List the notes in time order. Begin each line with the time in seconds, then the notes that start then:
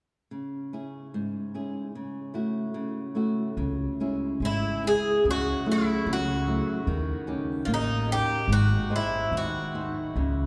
0.31 C#3
0.73 C#4 E4 G#4
1.14 G#2
1.54 C#4 E4 G#4
1.95 C#3
2.34 A3 E4 F#4
2.74 C#3
3.15 A3 E4 F#4
3.57 C#2 C#3
4.00 G#3 C#4 E4
4.40 G#1 G#3
4.45 E4
4.83 G#3 C#4 E4 G#4
5.24 C#2 C#3
5.31 F#4
5.66 F#3 A3 E4
5.72 E4
6.06 C#2 C#3
6.13 F#4
6.47 F#3 A3 E4
6.87 D#2 D#3
7.27 C#4 D#4 G4
7.65 A1 A#3 F4
7.74 D#4
8.08 C#4 D#4 G4
8.12 G4
8.48 G#1 G#3
8.53 F#4
8.90 G#4 C5 D#5
8.96 E4
9.31 D#2 D#3
9.37 F#4
9.75 D#4 G#4 C5
10.16 C#2 C#3